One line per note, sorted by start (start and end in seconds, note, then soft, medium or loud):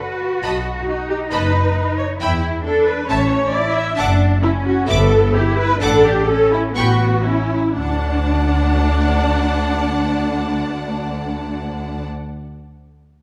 0.00 0.85 F#4 medium
0.00 0.43 B4 medium
0.00 0.31 D5 medium
0.00 0.31 F#5 medium
0.00 0.32 B5 medium
0.42 0.80 B1 medium
0.42 0.64 D#5 medium
0.42 0.64 A5 medium
0.42 0.63 B5 medium
0.86 2.20 D#4 medium
0.86 1.08 F#4 medium
1.09 1.17 G4 medium
1.31 1.69 F#1 medium
1.31 1.97 B4 loud
1.31 1.52 D#5 medium
1.31 1.52 A5 medium
1.31 1.52 B5 medium
1.98 2.06 C#5 medium
2.20 2.58 E2 medium
2.20 2.64 E4 medium
2.20 2.41 E5 medium
2.20 2.41 G5 medium
2.20 2.42 B5 medium
2.64 3.08 D4 medium
2.64 2.85 A4 loud
2.87 3.10 B4 medium
3.08 3.46 A1 medium
3.08 3.52 C#4 medium
3.08 3.53 C#5 loud
3.08 3.30 E5 medium
3.08 3.30 A5 medium
3.52 3.98 E4 medium
3.52 3.75 D5 loud
3.75 3.98 E5 loud
3.97 4.36 F#1 medium
3.97 4.42 D4 medium
3.97 4.19 F#5 medium
3.97 4.19 A5 medium
3.97 4.19 D6 medium
4.43 4.87 C#4 medium
4.43 4.51 E4 loud
4.66 4.88 F#4 loud
4.88 5.27 G1 loud
4.88 5.34 B3 medium
4.88 5.34 A4 loud
4.88 5.10 E5 medium
4.88 5.10 B5 medium
4.88 5.10 D6 medium
5.34 5.81 E4 loud
5.34 5.58 G4 loud
5.58 5.81 B4 loud
5.80 6.20 A1 medium
5.80 6.27 D4 medium
5.80 6.04 A4 loud
5.80 6.03 F#5 loud
5.80 6.03 A5 medium
5.80 6.03 D6 medium
6.04 6.28 G4 loud
6.27 6.75 C#4 medium
6.27 6.52 A4 loud
6.52 6.60 E4 loud
6.76 7.17 A1 medium
6.76 7.24 B3 medium
6.76 7.24 F#4 loud
6.76 6.99 G5 medium
6.76 7.00 B5 medium
6.76 6.99 C#6 medium
7.24 7.50 C#4 medium
7.24 7.75 E4 medium
7.75 12.05 D2 medium
7.75 12.06 D2 medium
7.75 12.05 D4 loud
7.75 12.07 D5 medium
7.75 12.07 F#5 medium
7.75 12.06 A5 medium